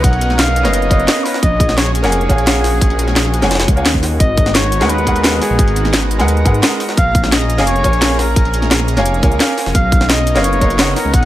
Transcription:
Already playing: B3 C#4 D#4 A#4 C#5 D#5 F#5
0.03 B1 F#5, kick, closed hi-hat
0.13 closed hi-hat
0.21 closed hi-hat
0.30 snare
0.38 F5, snare, closed hi-hat
0.48 snare
0.56 closed hi-hat
0.63 F#1 B3 A#4 C#5 D#5 F5, snare, closed hi-hat
0.73 D#5, closed hi-hat
0.82 closed hi-hat
0.90 F#1 B3 A#4 C#5 D#5 F5, kick, closed hi-hat
1.00 closed hi-hat
1.07 B3 A#4 C#5 D#5 F5, snare, closed hi-hat
1.25 B4, snare, closed hi-hat, open hi-hat
1.34 snare
1.42 A#1 F#4 G#4 D#5, kick, closed hi-hat
1.60 kick, closed hi-hat
1.69 snare
1.77 C#5, snare, closed hi-hat
1.86 snare
1.95 G#4, closed hi-hat
2.02 F1 A#3 A#4 C#5 F5 F#5 G#5, snare, closed hi-hat
2.12 closed hi-hat
2.21 closed hi-hat
2.29 A#1 A#3 A#4 C#5 F5 F#5 G#5, kick, closed hi-hat
2.38 closed hi-hat
2.45 A#3 A#4 C#5 F5 F#5, snare, closed hi-hat
2.49 G#5
2.64 snare, closed hi-hat, open hi-hat
2.81 A#1, kick, closed hi-hat
2.90 closed hi-hat
2.99 closed hi-hat
3.08 snare
3.16 snare, closed hi-hat
3.25 snare
3.34 closed hi-hat
3.42 F1 A#3 A#4 C#5 F5 F#5 G#5, snare, closed hi-hat
3.51 snare, closed hi-hat
3.55 snare, closed hi-hat
3.60 snare, closed hi-hat
3.68 C#2, kick, closed hi-hat
3.76 A#3 A#4 C#5 F5 F#5 G#5, closed hi-hat
3.85 D#2, snare, closed hi-hat
3.94 kick
4.03 snare, closed hi-hat, open hi-hat
4.20 G#1 B3 D#4 F#4 D#5 A#5, kick, closed hi-hat
4.37 kick, closed hi-hat
4.46 snare
4.55 C#5, snare, closed hi-hat
4.64 snare
4.72 closed hi-hat
4.80 D#2 G#3 G#4 A#4 B4 F#5, snare, closed hi-hat
4.89 B4, closed hi-hat
4.98 closed hi-hat
5.06 G#3 G#4 A#4 B4 F#5, kick, closed hi-hat
5.16 closed hi-hat
5.22 G#3 G#4 A#4 B4, snare, closed hi-hat
5.27 F#5
5.42 G#4, snare, closed hi-hat, open hi-hat
5.50 A#1
5.59 G#1, kick, closed hi-hat
5.68 closed hi-hat
5.76 closed hi-hat
5.85 snare
5.93 snare, closed hi-hat
6.02 snare
6.11 closed hi-hat
6.19 D#2 G#3 G#4 A#4 B4 F#5, snare, closed hi-hat
6.28 closed hi-hat
6.37 closed hi-hat
6.45 G#2 G#3 G#4 A#4 B4 F#5, kick, closed hi-hat
6.54 closed hi-hat
6.62 G#3 G#4 A#4 B4 F#5, snare, closed hi-hat
6.80 snare, closed hi-hat, open hi-hat
6.89 snare
6.97 A#1 C#4 G#4 F5, kick, closed hi-hat
7.15 kick, closed hi-hat
7.24 F5, snare
7.32 D#5, snare, closed hi-hat
7.41 snare
7.50 closed hi-hat
7.57 F1 A#3 A#4 C#5 F5 G#5, snare, closed hi-hat
7.67 C#5, closed hi-hat
7.76 closed hi-hat
7.84 A#1 A#3 A#4 C#5 F5 G#5, kick, closed hi-hat
7.93 closed hi-hat
8.00 A#3 A#4 C#5 F5, snare, closed hi-hat
8.04 G#5
8.19 A#4, snare, closed hi-hat, open hi-hat
8.36 A#1, kick, closed hi-hat
8.45 closed hi-hat
8.54 closed hi-hat
8.62 snare
8.71 snare, closed hi-hat
8.80 snare
8.88 closed hi-hat
8.96 F1 A#3 A#4 C#5 F5 G#5, snare, closed hi-hat
9.06 closed hi-hat
9.14 closed hi-hat
9.22 C#2 A#3 A#4 C#5 F5 G#5, kick, closed hi-hat
9.32 closed hi-hat
9.40 A#3 A#4 C#5 F5 G#5, snare, closed hi-hat
9.58 snare, closed hi-hat, open hi-hat
9.66 F1, snare
9.75 B1 D#4 F5, kick, closed hi-hat
9.92 kick, closed hi-hat
10.01 snare
10.09 D#5, snare, closed hi-hat
10.18 snare
10.27 closed hi-hat
10.35 F#1 B3 A#4 C#5 D#5 F5, snare, closed hi-hat
10.44 C#5, closed hi-hat
10.53 closed hi-hat
10.61 B3 A#4 C#5 D#5 F5, kick, closed hi-hat
10.70 closed hi-hat
10.77 B3 A#4 C#5 D#5, snare, closed hi-hat
10.81 F#5
10.96 A#4, snare, closed hi-hat, open hi-hat
11.05 C#2
11.14 B1 F#5, kick, closed hi-hat

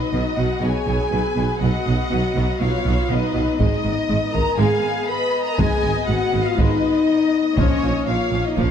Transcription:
Already playing: F#3 B3 D#4 B4 D#5
0.13 B1 B2 F#3 B3 D#5
0.36 B1 B2 F#3 B3 F#4 F#5
0.61 B1 B2 F#3 B3 G#4 C#5 G#5
0.87 B1 B2 F#3 B3
1.11 B1 B2 F#3 B3 B4
1.36 B1 B2 F#3 B3
1.61 B1 B2 F#3 B3 F#4 D#5 F#5
1.86 B1 B2 F#3 B3
2.11 B1 B2 F#3 B3
2.35 B1 B2 F#3 B3
2.60 B1 B2 F#3 B3 F4 C#5 F5
2.85 B1 B2 F#3 B3
3.09 B1 B2 F#3 B3 D#4 B4 D#5
3.34 B1 B2 F#3 B3
3.59 G#1 G#2 G#3 B3 D#4 D#5, taiko
3.84 G#1 G#2 G#3
4.09 G#1 G#2 G#3
4.33 G#1 G#2 G#3 A#4 A#5, taiko
4.58 G#1 G#2 G#3 G#4 F5 G#5
5.08 B4 D#5 B5
5.44 A#4 A#5
5.58 G#1 G#2 G#3 G#4 G#5, taiko
5.83 G#1 G#2 G#3
6.06 G#1 G#2 G#3 F#4 F#5
6.32 G#1 G#2 G#3
6.44 F4 F5
6.57 G#1 G#2 G#3 D#4 B4 D#5, taiko
7.09 D#5
7.57 A#1 A#2 F3 A#3 C#4 C#5, taiko
7.82 A#1 A#2 F3
8.07 A#1 A#2 F3 F4 C#5 F5
8.32 A#1 A#2 F3
8.46 D#4 D#5
8.57 A#1 A#2 F3 C#4 C#5 F5, taiko

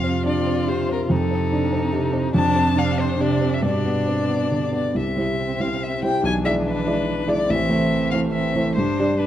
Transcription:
Already playing: F2 C3 F4 F5
0.04 C4
0.26 D4 D5
0.46 C4
0.67 C3 C5
0.89 C4 A#4
1.10 F2 C3 D#4 A4
1.31 C4
1.52 D4
1.72 C4
1.92 C3
2.13 C4
2.34 F2 C3 D4 A5
2.56 C4
2.76 C3 D4 F5
2.98 C4 C5
3.18 C3 D4 D5
3.41 C4
3.54 E5
3.61 G2 B2 D4
3.65 D5
3.85 B3
4.07 C4
4.29 B3
4.51 D3
4.73 B3 D5
4.95 C2 C3 C4 E5
5.17 G3 E4 C5
5.60 G3 E4 C5 F5
5.83 E5
6.03 G3 E4 C5 G5
6.23 B1 E3 D4 G#5
6.44 G#3 E4 D5 E5
6.66 B4
6.87 G#3 E4 D5
7.28 G#3 E4 D5
7.48 A1 E3 C4 E5
7.70 A3 E4 C5
8.11 A3 E4 C5 F5
8.32 E3 C4 E5
8.55 A3 E4 C5
8.75 G2 G3 D4 C5
8.99 D4 G4 D5
9.19 G3 D4 B4

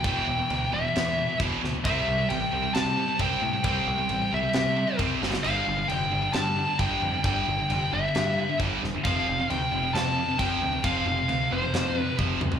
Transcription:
0.04 E1 E2 B2 E3 G5, kick, crash
0.27 E1 E2 B2
0.39 E2 B2
0.50 D2 E2 B2, crash
0.72 E1 E2 B2 E3 E5
0.84 E2 B2
0.95 E2 B2, snare, crash
1.18 E2 B2
1.30 E2 B2
1.40 E1 E2 B2 E3, kick, crash
1.62 D2 E2 B2, snare
1.74 E2 B2
1.85 C2 C3 G3 C4 E5, kick, crash
2.07 C2 C3 G3
2.18 C3 G3
2.29 A1 C3 G3 G5, crash
2.52 C2 C3 G3 C4
2.63 C3 G3
2.74 C3 G3 A5, snare, crash
2.97 C3 G3
3.08 C3 G3
3.19 C2 C3 G3 C4 G5, kick, crash
3.42 A2 C3 G3
3.53 C3 G3
3.64 C2 C3 G3 C4 G5, kick, crash
3.87 C2 C3 G3
3.98 C3 G3
4.09 A1 C3 G3, crash
4.31 C2 C3 G3 C4 E5
4.43 C3 G3
4.53 C3 G3, snare, crash
4.76 C3 G3
4.87 C3 G3
4.98 C2 C3 G3 C4, kick, crash
5.20 G1 G2 D3 G3, snare
5.33 G2 D3, snare
5.42 G1 G2 D3 G3 F5, crash
5.66 G1 G2 D3
5.78 G2 D3
5.88 F1 G2 D3 G3 G5, crash
6.11 G1 G2 D3
6.22 G2 D3
6.33 G2 D3 A5, snare, crash
6.56 G2 D3
6.67 G2 D3
6.79 G1 G2 D3 G3 G5, kick, crash
7.02 F2 G2 D3 G3
7.14 G2 D3
7.24 G1 G2 D3 G3 G5, kick, crash
7.47 G1 G2 D3
7.59 G2 D3
7.69 F1 G2 D3 G3, crash
7.92 G1 G2 D3 E5
8.04 G2 D3
8.15 G2 D3, snare, crash
8.39 G2 D3
8.49 G2 D3
8.60 G1 G2 D3 G3, kick, crash
8.83 E1 G2 D3, snare
8.94 G2 D3
9.04 F1 F2 C3 F3 F5, kick, crash
9.27 F1 F2 C3
9.39 F2 C3
9.49 D2 F2 C3 G5, crash
9.71 F1 F2 C3 F3
9.83 F2 C3
9.94 F2 C3 A5, snare, crash
10.17 F2 C3
10.29 F2 C3
10.39 F1 F2 C3 F3 G5, kick, crash
10.61 D2 F2 C3
10.72 F2 C3
10.84 F1 F2 C3 F3 F5, kick, crash
11.06 F1 F2 C3
11.17 F2 C3
11.28 D2 F2 C3, crash
11.51 F1 F2 C3 F3 C5
11.62 F2 C3
11.72 F2 C3, snare, crash
11.95 F2 C3 B4
12.06 F2 C3
12.18 F1 F2 C3 F3, kick, high tom
12.40 D2 F2 C3, mid tom
12.52 F2 C3, floor tom

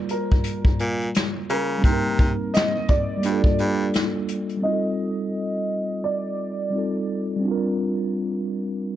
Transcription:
Already playing: G3 A#3 F4 A#4 D5
0.09 A#4, closed hi-hat
0.31 kick, closed hi-hat
0.44 closed hi-hat
0.65 A#2, kick
0.79 A#2, closed hi-hat
1.01 closed hi-hat
1.14 snare, closed hi-hat
1.49 C#3 A#4, closed hi-hat
1.78 G3 C4
1.84 C3 A#3, kick, closed hi-hat
1.89 D#4 A#4
2.19 kick, closed hi-hat
2.54 D#5, snare, closed hi-hat
2.88 D5, kick, closed hi-hat
3.17 G3 A#3
3.23 G2 D4, closed hi-hat
3.29 F4 A4
3.44 G2, kick
3.58 G2, closed hi-hat
3.94 snare, closed hi-hat
4.28 closed hi-hat
4.49 closed hi-hat
4.57 G3 C4
4.63 D#4 D#5
4.68 F4 A4
6.04 D5
6.70 G3 C4 D#4
6.76 F4 A4
7.36 G3 C4
7.44 D4 F4
7.51 A#4

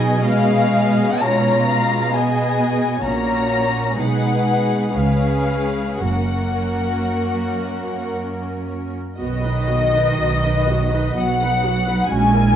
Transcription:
Already playing: B2 F#3 D#4 G#4 D#5 G#5
0.22 G#3 C#4 G#4 F5
1.22 G#3 F4 C#5 A#5
1.69 F5
2.13 B3 G#4 D#5 G#5
3.02 A#1 A#2 A#3 C#4 F#4 C#5 A#5
3.96 B1 B2 G#3 D#4 G#4 B4 F#5
4.94 C#2 C#3 G#3 C#4 G#4 B4 F5
5.99 F#1 F#2 A#3 C#4 F#4 A#4 F#5
9.18 B1 D#3 B3 F#4 D#5
9.44 D#4 B4
9.68 B3 F#4
9.93 D#4 B4
10.19 B1 B3 F#4
10.44 D#4 B4
10.68 B3 F#4
10.93 D#4 B4
11.16 B1 F#3 B3 F#4 F#5
11.41 D#4 B4
11.65 B3 F#4
11.87 D#4 B4
12.09 A#1 G#3 C#4 F#4 G#5
12.34 E4 A#4

